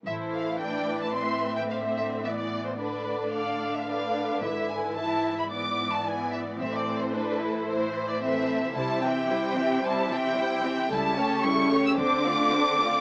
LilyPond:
<<
  \new Staff \with { instrumentName = "Violin section" } { \time 4/4 \key a \minor \tempo 4 = 111 e''8 f''8 g''8. a''16 c'''8. g''16 f''8 e''8 | e''16 d''8 c''16 b'4 d''8. e''16 f''4 | e''8 gis''8 a''8. b''16 d'''8. a''16 gis''8 e''8 | e''16 d''8 c''16 b'4 c''8. d''16 e''4 |
\key c \major a''8 g''4. a''8 g''4. | a''4 cis'''8. e'''16 d'''2 | }
  \new Staff \with { instrumentName = "Violin section" } { \time 4/4 \key a \minor << { c''4 d''4 e''4 e''4 | d''2 f''4 d''4 | b'4 e''4 d''2 | c''2. a'4 |
\key c \major c''8 e''8 c''8 e''8 c''8 e''8 c''8 e''8 | a'8 cis''8 a'8 cis''8 c''8 d''8 c''8 d''8 | } \\ { a'4 b'2 c''4 | d''4 d''4 a'4 b'4 | b'1 | a'2 c''4 c''4 |
e'8 g'8 e'8 g'8 e'8 g'8 e'8 g'8 | a'8 g'8 a'8 g'8 a'8 f'8 a'8 f'8 | } >> }
  \new Staff \with { instrumentName = "Viola section" } { \time 4/4 \key a \minor << { e'4 d'4 c'2 | b4 d'2 d'4 | e'4 e'4 b4 b4 | c'4 d'8 e'4. c'4 |
\key c \major e'8 c'8 e'8 c'8 e'8 c'8 e'8 c'8 | e'8 cis'8 e'8 cis'8 d'8 c'8 d'8 c'8 | } \\ { e2. d4 | e4 d8 d2~ d8~ | d4 e4 e2 | e2 e4 e4 |
g8 e8 g8 e8 g8 e8 g8 e8 | g8 a8 g8 a8 c'8 a8 c'8 a8 | } >> }
  \new Staff \with { instrumentName = "Cello section" } { \clef bass \time 4/4 \key a \minor a,1~ | a,1 | gis,1 | a,1 |
\key c \major c1 | cis2 d2 | }
  \new Staff \with { instrumentName = "Double bass section" } { \clef bass \time 4/4 \key a \minor a,,4 r2. | r1 | gis,,4 r2. | a,,4 r2. |
\key c \major c,4 r2. | cis,4 r4 d,4 r4 | }
>>